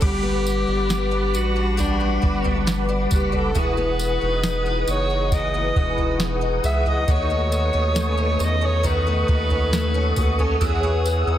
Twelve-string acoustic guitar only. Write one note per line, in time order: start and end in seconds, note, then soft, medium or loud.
0.00 1.76 G3 medium
0.00 0.10 A3 medium
0.00 0.10 C#4 medium
0.00 1.33 F#4 medium
0.23 0.89 B3 medium
0.67 1.10 D4 medium
0.89 2.00 B3 medium
1.11 1.55 D4 medium
1.34 1.77 F#4 medium
1.56 2.43 D4 medium
1.77 3.63 G3 medium
1.77 2.21 F#4 medium
2.00 2.66 B3 medium
2.22 3.10 F#4 medium
2.44 2.87 D4 medium
2.67 3.77 B3 medium
2.89 3.31 D4 medium
3.11 3.55 F#4 medium
3.32 3.63 D4 medium
3.55 5.31 E3 medium
3.55 4.00 F#4 medium
3.77 4.44 B3 medium
4.00 4.87 F#4 medium
4.21 4.65 D#4 medium
4.44 5.54 B3 medium
4.66 5.10 D#4 medium
4.88 5.32 F#4 medium
5.10 5.97 D#4 medium
5.32 7.08 E3 medium
5.32 5.76 F#4 medium
5.54 6.20 B3 medium
5.76 6.63 F#4 medium
5.98 6.41 D#4 medium
6.20 7.30 B3 medium
6.41 6.86 D#4 medium
6.63 7.08 F#4 medium
6.86 7.33 D#4 medium
7.08 8.83 D#3 medium
7.08 7.51 F#4 medium
7.30 7.94 A3 medium
7.52 8.39 F#4 medium
7.73 8.16 C#4 medium
7.95 9.05 A3 medium
8.18 8.60 C#4 medium
8.39 8.84 F#4 medium
8.61 9.49 C#4 medium
8.83 10.60 D#3 medium
8.83 9.28 F#4 medium
9.07 9.71 A3 medium
9.28 10.16 F#4 medium
9.50 9.93 C#4 medium
9.73 10.70 A3 medium
9.94 10.38 C#4 medium
10.17 10.61 F#4 medium
10.39 10.70 C#4 medium
10.61 11.38 E3 medium
10.61 11.06 F#4 medium
10.83 11.38 B3 medium
11.06 11.38 F#4 medium
11.27 11.38 D#4 medium